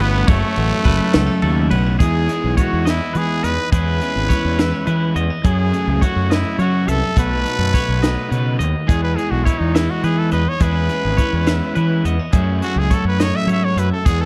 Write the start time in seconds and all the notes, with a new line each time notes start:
Already playing: E2 E3 A3 F#4
0.00 G1 A3 B3 C#4 E4 A4 B4
0.14 C#4
0.27 F#1 F#2 F#3 A3 C#4 E4 F#4 C#5, kick, ride
0.56 A1 A3 B3 C#4 F#4, ride
0.71 C#4
0.85 F#1 F#3 A3 C#4 F#4 B4, kick, ride
1.13 C#2 B3 C#4 F#4 A4, snare, ride
1.18 A3
1.27 C#4
1.42 D#2 C#3 F#3 A3 C#4 E4 A4, ride
1.46 F#4
1.71 B1 A3 B3 C#4 F#4 B4, ride
1.86 C#4
1.99 E2 E3 G#3 B3 E4 G#4, kick, closed hi-hat
2.03 D#4
2.29 E3 G#3 B3 E4, closed hi-hat
2.44 B1
2.57 E3 G#3 B3 D#4 E4 F#4 C#5, kick, closed hi-hat
2.73 E2
2.85 E3 G#3 B3 D#4 E4 D#5, snare, closed hi-hat
3.13 E3 G#3 B3 D#4 E4 G#4 B4, closed hi-hat
3.43 E2 D#4 B4 D#5, closed hi-hat
3.71 E2 E3 G#3 C#4 E4 G#4 B4, kick, closed hi-hat
4.01 E3 G#3 B3 C#4 E4, closed hi-hat
4.16 G#1
4.29 E3 G#3 C#4 E4 C#5, kick, closed hi-hat
4.45 E2
4.58 E3 G#3 B3 C#4 E4 E5, snare, closed hi-hat
4.72 C#4
4.87 E3 G#3 C#4 E4 B4, closed hi-hat
5.15 E2 B3 D#5, closed hi-hat
5.30 C#4
5.43 F#2 C#3 F#3 A3 C#4 E4 G#4, kick, closed hi-hat
5.73 C#3 F#3 A3 C#4, closed hi-hat
5.87 C#2
6.01 C#3 F#3 A3 C#4 E4 F#4 C#5, kick, closed hi-hat
6.16 F#2
6.30 C#3 F#3 A3 C#4 E4 D#5, snare, closed hi-hat
6.59 C#3 F#3 A3 C#4 E4 F#4 C#5, closed hi-hat
6.87 C2 B3 A4 E5, closed hi-hat
7.04 C#4
7.17 B1 B2 F#3 A3 D#4 F#4 A4 B4, kick, closed hi-hat
7.44 B2 F#3 A3 D#4, closed hi-hat
7.59 F#2
7.73 B2 F#3 A3 D#4 F#4 C#5, kick, closed hi-hat
7.88 B1
8.02 B2 F#3 A3 D#4 D#5, snare, closed hi-hat
8.30 B2 C#3 F#3 A3 D#4 B4, closed hi-hat
8.59 D#2 D#3 D#5, closed hi-hat
8.87 E2 E3 G#3 B3 D#4 E4 G#4, kick, closed hi-hat
9.03 B4
9.16 E3 G#3 B3 E4 G#4, closed hi-hat
9.31 B1 F#4
9.44 E3 G#3 B3 D#4 E4 C#5, kick, closed hi-hat
9.59 E2 D#4
9.74 E3 G#3 B3 D#4 E4 D#5, snare, closed hi-hat
9.90 F#4
10.02 E3 G#3 B3 D#4 E4 G#4 B4, closed hi-hat
10.19 A4
10.32 E2 D#4 B4 D#5, closed hi-hat
10.49 C#5
10.59 E2 E3 G#3 C#4 E4 G#4 B4, kick, closed hi-hat
10.64 E4
10.89 E3 G#3 B3 C#4 E4, closed hi-hat
11.05 G#1
11.17 E3 G#3 C#4 E4 C#5, kick, closed hi-hat
11.33 E2
11.46 E3 G#3 C#4 E4 E5, snare, closed hi-hat
11.75 E3 G#3 C#4 E4 B4, closed hi-hat
12.05 E2 B3 D#5, closed hi-hat
12.19 C#4
12.33 F#2 F#3 A3 C#4 E4 F#4 G#4, kick, closed hi-hat
12.62 F#3 A3 C#4 F#4, closed hi-hat
12.76 C#2 G#4
12.90 F#3 A3 C#4 E4 F#4 A4 C#5, kick, closed hi-hat
13.05 F#2 B4
13.19 A2 F#3 A3 C#4 F#4 C#5 D#5, snare, closed hi-hat
13.36 E5
13.47 G#2 F#3 A3 C#4 F#4 C#5, closed hi-hat
13.52 E5
13.64 C#5
13.76 F#2 B4 E5, closed hi-hat
13.93 A4
14.05 E2 E3 G#3 B3 E4 G#4, kick, closed hi-hat
14.21 A4